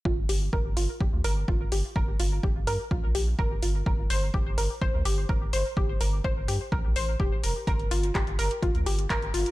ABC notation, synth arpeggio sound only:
X:1
M:4/4
L:1/16
Q:1/4=126
K:Gm
V:1 name="Synth arpeggio sound"
F2 G2 B2 F2 G2 B2 F2 G2 | B z F2 G2 B z F2 G2 B z F2 | B2 c z G2 B2 c z G2 B2 c z | G2 B2 c z G2 B2 c z G2 B2 |
B z F2 G2 B z F2 G2 B z F2 |]